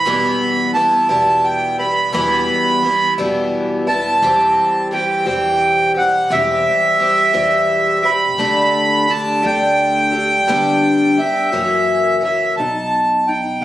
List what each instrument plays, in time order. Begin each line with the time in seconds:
Already playing: accordion B5
0.05 upright bass E1, twelve-string acoustic guitar E2 B2 E3 G3 B3 E4
0.74 twelve-string acoustic guitar E3 G3 B3 E4, accordion A5
1.09 upright bass E1, twelve-string acoustic guitar E2 B2 E3 G3 B3 E4, accordion A5
1.44 accordion G5
1.78 twelve-string acoustic guitar E3 G3 B3 E4, accordion B5
2.12 upright bass E1, twelve-string acoustic guitar E2 B2 E3 G3 B3 E4, accordion B5
2.82 twelve-string acoustic guitar E3 G3 B3 E4
3.18 upright bass E1, twelve-string acoustic guitar E2 B2 E3 G3 B3 E4
3.87 twelve-string acoustic guitar E3 G3 B3 E4, accordion A5
4.22 upright bass E1, twelve-string acoustic guitar E3 G3 C4 G4
4.91 twelve-string acoustic guitar E3 G3 C4 G4, accordion G5
5.26 upright bass E1, twelve-string acoustic guitar E3 G3 C4 G4, accordion G5
5.94 twelve-string acoustic guitar G3 C4 G4, accordion F#5
6.30 upright bass E1, twelve-string acoustic guitar E3 G3 C4 G4, accordion E5
6.98 twelve-string acoustic guitar E3 G3 C4 G4
7.33 upright bass E1, twelve-string acoustic guitar E3 G3 C4 G4
8.03 twelve-string acoustic guitar G3 C4 G4, accordion B5
8.38 upright bass D2, twelve-string acoustic guitar D3 A3 D4 G4
9.08 twelve-string acoustic guitar D3 A3 D4 G4, accordion A5
9.42 upright bass D2, twelve-string acoustic guitar D3 A3 D4 G4, accordion G5
10.12 twelve-string acoustic guitar A3 D4 G4
10.47 upright bass G1, twelve-string acoustic guitar G2 D3 G3 B3 D4 G4
11.17 twelve-string acoustic guitar G3 B3 D4 G4, accordion E5
11.52 upright bass F#1, twelve-string acoustic guitar F#2 C#3 E3 A#3 C#4 F#4
12.21 twelve-string acoustic guitar E3 A#3 C#4 F#4, accordion E5
12.57 upright bass B1, steel-string acoustic guitar B2 D#4, accordion A5
13.27 steel-string acoustic guitar D#4, accordion G5
13.61 steel-string acoustic guitar D#3, accordion F#5